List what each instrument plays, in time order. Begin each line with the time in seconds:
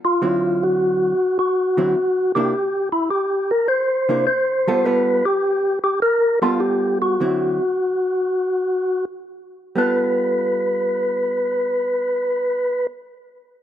0.05 tonewheel organ F4
0.22 hollow-body jazz guitar D3 F#3 C4 E4
0.63 tonewheel organ F#4
1.39 tonewheel organ F#4
1.77 hollow-body jazz guitar D3 F#3 C4 E4
2.35 hollow-body jazz guitar C3 A#3 D4 E4, tonewheel organ G4
2.92 tonewheel organ E4
3.10 tonewheel organ G4
3.51 tonewheel organ A#4
3.68 tonewheel organ C5
4.09 hollow-body jazz guitar C3 A#3 D4 E4
4.27 tonewheel organ C5
4.67 hollow-body jazz guitar G3 B3 F4 A4
4.84 hollow-body jazz guitar G3 B3 F4 A4, tonewheel organ B4
5.25 tonewheel organ G4
5.84 tonewheel organ G4
6.02 tonewheel organ A#4
6.42 hollow-body jazz guitar G3 B3 F4 A4, tonewheel organ F4
6.60 tonewheel organ G4
7.02 tonewheel organ F#4
7.20 hollow-body jazz guitar D3 F#3 C4 E4
9.76 hollow-body jazz guitar G3 B3 F4 A4, tonewheel organ B4